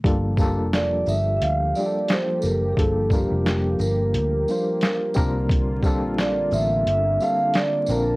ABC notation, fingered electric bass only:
X:1
M:4/4
L:1/16
Q:"Swing 16ths" 1/4=88
K:Gm
V:1 name="Fingered electric bass" clef=bass
G,,,3 F,,,3 G,,,2 D,,2 z4 ^F,,,2 | G,,,3 F,,,3 G,,,2 D,,2 z4 C,,2- | C,,3 B,,,3 A,,,2 G,,,2 z4 B,,,2 |]